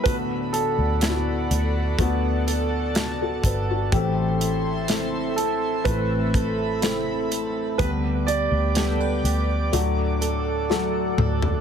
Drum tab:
HH |x-x-x-x-x-x-x-x-|x-x-x-x-x-x-x-x-|x-x-x-x-x-x-----|
SD |----o-------o---|----o-------o---|----o-------o---|
T2 |----------------|----------------|--------------o-|
FT |----------------|----------------|---------------o|
BD |o-------o-----o-|o-------o-o-----|o---------------|